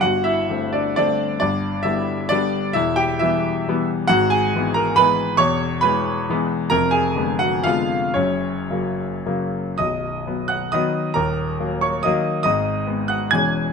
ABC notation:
X:1
M:3/4
L:1/8
Q:1/4=133
K:Em
V:1 name="Grand piano"
[Ff] [Ee]2 [Dd] [Dd]2 | [Dd]2 [Ee]2 [Dd]2 | [Ee] [Gg] [Ee]3 z | [K:B] [Ff] [Gg]2 [Aa] [Bb]2 |
[cc']2 [Bb]3 z | [Aa] [_A_a]2 [Ff] [=F=f]2 | [Cc]4- [Cc] z | [dd']3 [ff'] [dd']2 |
[Aa]3 [cc'] [dd']2 | [dd']3 [ff'] [gg']2 |]
V:2 name="Grand piano" clef=bass
[G,,,G,,]2 [D,A,C]2 [D,A,C]2 | [G,,,G,,]2 [D,G,B,]2 [D,G,B,]2 | [E,,,E,,]2 [E,G,B,]2 [E,G,B,]2 | [K:B] [G,,,G,,]2 [E,G,B,]2 [E,G,B,]2 |
[E,,,E,,]2 [E,G,B,]2 [E,G,B,]2 | [=F,,,=F,,]2 [=D,_A,_C]2 [D,A,C]2 | [F,,,F,,]2 [C,F,A,]2 [C,F,A,]2 | [B,,,,B,,,]2 [F,B,]2 [D,F,B,]2 |
[D,,,D,,]2 [F,A,]2 [D,F,A,]2 | [G,,,G,,]2 [G,B,]2 [E,,,E,,E,G,C]2 |]